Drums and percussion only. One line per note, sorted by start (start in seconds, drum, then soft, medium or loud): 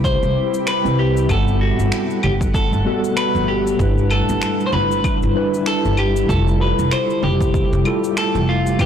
0.04 kick loud
0.04 cabasa soft
0.23 cabasa soft
0.54 cabasa medium
0.67 finger snap loud
0.67 cabasa medium
0.67 claves medium
0.86 cabasa soft
1.17 cabasa medium
1.29 kick loud
1.29 cabasa medium
1.29 claves medium
1.48 cabasa soft
1.79 cabasa medium
1.92 finger snap medium
1.92 cabasa medium
2.10 cabasa soft
2.23 low conga medium
2.23 claves medium
2.41 kick medium
2.41 cabasa medium
2.54 kick loud
2.54 cabasa soft
2.73 cabasa soft
3.04 cabasa medium
3.17 finger snap medium
3.17 cabasa medium
3.17 claves medium
3.35 high conga medium
3.35 cabasa soft
3.67 cabasa medium
3.79 kick loud
3.79 cabasa soft
3.98 cabasa soft
4.10 claves medium
4.29 cabasa medium
4.42 finger snap loud
4.42 cabasa medium
4.60 cabasa soft
4.73 low conga medium
4.91 cabasa medium
5.04 kick loud
5.04 cabasa soft
5.04 claves medium
5.23 cabasa soft
5.54 cabasa medium
5.66 finger snap medium
5.66 cabasa medium
5.85 cabasa soft
5.97 claves medium
6.16 cabasa medium
6.29 kick loud
6.29 cabasa soft
6.48 cabasa soft
6.79 cabasa medium
6.91 finger snap medium
6.91 cabasa medium
6.91 claves medium
7.10 cabasa soft
7.23 low conga medium
7.41 kick loud
7.41 cabasa medium
7.54 kick loud
7.54 cabasa soft
7.73 cabasa soft
7.85 claves medium
8.04 cabasa medium
8.17 finger snap medium
8.17 cabasa medium
8.35 high conga medium
8.35 cabasa soft
8.67 cabasa medium
8.79 kick loud
8.79 cabasa soft
8.79 claves medium